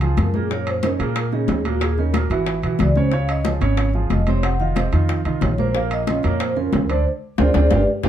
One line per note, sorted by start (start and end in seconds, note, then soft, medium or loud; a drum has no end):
0.00 0.14 C#2 medium
0.00 0.28 F3 medium
0.00 0.28 F4 medium
0.00 0.29 G#4 medium
0.00 high bongo soft
0.00 high conga soft
0.00 high timbale medium
0.17 0.94 F#2 medium
0.17 0.34 A#4 medium
0.17 high bongo soft
0.17 low bongo medium
0.17 high conga medium
0.17 high timbale medium
0.34 0.47 A#2 medium
0.34 0.48 A#3 medium
0.34 0.52 G#4 medium
0.34 0.48 A#4 medium
0.34 high conga medium
0.50 0.78 A#2 medium
0.50 0.78 A#3 medium
0.50 0.78 A#4 medium
0.50 0.68 C#5 loud
0.50 high bongo medium
0.50 high conga soft
0.67 0.85 C5 loud
0.67 high bongo soft
0.67 high conga soft
0.67 high timbale medium
0.83 0.97 C#3 medium
0.83 0.97 C#4 medium
0.83 0.97 D#4 medium
0.83 1.01 A#4 medium
0.83 high bongo medium
0.83 high conga medium
0.83 high timbale medium
0.99 1.26 A#2 medium
0.99 1.45 A#2 medium
0.99 1.27 A#3 medium
0.99 1.15 G#4 medium
0.99 1.27 A#4 medium
0.99 high bongo soft
0.99 high conga soft
0.99 high timbale medium
1.15 1.25 A#4 medium
1.15 high bongo medium
1.15 high conga soft
1.15 high timbale loud
1.32 1.59 C#3 medium
1.32 1.59 C#4 medium
1.32 1.60 D#4 medium
1.32 1.63 G#4 medium
1.32 high bongo soft
1.32 high conga soft
1.48 2.25 D#2 medium
1.48 high bongo soft
1.48 low bongo medium
1.48 high conga medium
1.48 high timbale medium
1.48 low timbale medium
1.65 1.92 A#2 medium
1.65 1.92 A#3 medium
1.65 1.73 F#4 medium
1.65 1.92 A#4 medium
1.65 high timbale medium
1.81 1.98 G#4 medium
1.81 high bongo medium
1.81 high conga soft
1.81 high timbale loud
1.98 2.12 C#3 medium
1.98 2.12 C#4 medium
1.98 2.12 D#4 medium
1.98 2.16 A#4 medium
1.98 high bongo soft
1.98 high conga soft
2.14 2.28 A#2 medium
2.14 2.28 A#3 medium
2.14 2.46 F#4 medium
2.14 2.28 A#4 medium
2.14 high bongo medium
2.14 high conga medium
2.14 high timbale loud
2.30 2.61 G#1 medium
2.30 2.58 E3 medium
2.30 2.58 E4 medium
2.30 2.58 F#4 medium
2.30 high bongo soft
2.30 high conga soft
2.30 high timbale medium
2.46 high bongo medium
2.46 high conga soft
2.46 high timbale medium
2.63 2.78 B1 medium
2.63 2.91 E3 medium
2.63 2.91 E4 medium
2.63 2.91 F#4 medium
2.63 high bongo soft
2.63 high conga soft
2.63 high timbale medium
2.79 3.56 C#2 medium
2.79 2.98 D5 medium
2.79 high bongo soft
2.79 low bongo medium
2.79 high conga medium
2.79 high timbale medium
2.96 3.10 C#3 medium
2.96 3.10 C#4 medium
2.96 3.12 C5 medium
2.96 3.10 C#5 medium
2.96 high conga medium
3.12 3.40 C#3 medium
3.12 3.40 C#4 medium
3.12 3.40 C#5 medium
3.12 3.30 F5 medium
3.12 high bongo medium
3.12 high conga soft
3.28 3.38 D#5 loud
3.28 high bongo soft
3.28 high conga soft
3.28 high timbale medium
3.45 3.59 F3 medium
3.45 3.59 F4 medium
3.45 3.59 G#4 medium
3.45 3.61 C#5 medium
3.45 high bongo medium
3.45 high conga medium
3.45 high timbale medium
3.61 4.07 G#1 medium
3.61 3.88 C#3 medium
3.61 3.89 C#4 medium
3.61 3.89 C#5 medium
3.61 high bongo soft
3.61 high conga soft
3.61 high timbale medium
3.77 high bongo medium
3.77 high conga soft
3.77 high timbale loud
3.94 4.22 F3 medium
3.94 4.22 F4 medium
3.94 4.22 G#4 medium
3.94 high bongo soft
3.94 high conga soft
4.10 4.87 F1 medium
4.10 4.27 D#5 medium
4.10 high bongo soft
4.10 low bongo medium
4.10 high conga medium
4.10 high timbale medium
4.27 4.54 C3 medium
4.27 4.55 C4 medium
4.27 4.55 C5 medium
4.27 4.45 C#5 medium
4.27 high conga medium
4.27 high timbale medium
4.43 4.61 F#5 loud
4.43 high bongo medium
4.43 high conga soft
4.43 high timbale loud
4.60 4.73 D#3 medium
4.60 4.74 D#4 medium
4.60 4.74 F4 medium
4.60 4.76 F5 loud
4.60 high bongo soft
4.60 high conga soft
4.76 4.90 C3 medium
4.76 4.90 C4 medium
4.76 4.90 C5 medium
4.76 4.93 D#5 medium
4.76 high bongo medium
4.76 high conga medium
4.76 high timbale medium
4.92 5.23 F2 medium
4.92 5.20 D#3 medium
4.92 5.20 D#4 medium
4.92 5.20 F4 medium
4.92 high bongo soft
4.92 high conga soft
4.92 high timbale medium
5.09 high bongo medium
5.09 high conga soft
5.09 high timbale medium
5.25 5.41 C2 medium
5.25 5.52 D#3 medium
5.25 5.53 D#4 medium
5.25 5.53 F4 medium
5.25 high bongo soft
5.25 high conga soft
5.25 high timbale medium
5.41 6.18 A#1 medium
5.41 5.58 C#5 medium
5.41 high bongo soft
5.41 low bongo medium
5.41 high conga medium
5.41 high timbale medium
5.41 low timbale medium
5.58 5.72 A#2 medium
5.58 5.72 A#3 medium
5.58 5.72 A#4 medium
5.58 5.67 C5 loud
5.58 high conga medium
5.75 6.02 A#2 medium
5.75 6.02 A#3 medium
5.75 6.02 A#4 medium
5.75 5.90 F5 loud
5.75 high bongo medium
5.75 high conga soft
5.91 6.26 D#5 loud
5.91 high bongo soft
5.91 high conga soft
5.91 high timbale medium
6.07 6.21 C#3 medium
6.07 6.21 C#4 medium
6.07 6.22 F4 medium
6.07 high bongo medium
6.07 high conga medium
6.07 high timbale medium
6.23 6.70 F2 medium
6.23 6.51 A#2 medium
6.23 6.51 A#3 medium
6.23 6.51 A#4 medium
6.23 6.40 C#5 medium
6.23 high bongo soft
6.23 high conga soft
6.23 high timbale medium
6.40 6.55 C5 medium
6.40 high bongo medium
6.40 high conga soft
6.40 high timbale medium
6.56 6.84 C#3 medium
6.56 6.84 C#4 medium
6.56 6.84 F4 medium
6.56 6.87 A#4 medium
6.56 high bongo soft
6.56 high conga soft
6.73 7.04 D2 loud
6.73 high bongo soft
6.73 low bongo medium
6.73 high conga medium
6.73 high timbale medium
6.73 low timbale medium
6.89 7.03 D3 medium
6.89 7.03 D4 medium
6.89 7.06 C5 medium
6.89 7.03 D5 medium
6.89 high timbale medium
7.38 7.51 D2 medium
7.38 7.49 C4 medium
7.38 7.49 D4 medium
7.38 7.49 F4 medium
7.38 7.50 G#4 medium
7.38 7.50 C5 medium
7.38 7.50 D5 medium
7.38 high bongo medium
7.38 high conga medium
7.38 high timbale loud
7.54 7.67 D2 medium
7.54 7.66 C4 loud
7.54 7.66 D4 medium
7.54 7.66 F4 medium
7.54 7.66 G#4 medium
7.54 7.66 C5 medium
7.54 7.66 D5 medium
7.54 high bongo loud
7.54 high conga loud
7.54 high timbale loud
7.71 7.83 G1 loud
7.71 7.82 D4 medium
7.71 7.82 F4 medium
7.71 7.82 G4 medium
7.71 7.82 G4 loud
7.71 7.82 B4 medium
7.71 7.82 D5 medium
7.71 high bongo loud
7.71 high conga medium
7.71 high timbale loud
8.03 8.09 G1 medium
8.03 8.09 D4 loud
8.03 8.09 F4 loud
8.03 8.09 G4 loud
8.03 8.09 G4 medium
8.03 8.09 B4 loud
8.03 8.09 D5 medium
8.03 high bongo medium
8.03 high conga medium
8.03 high timbale medium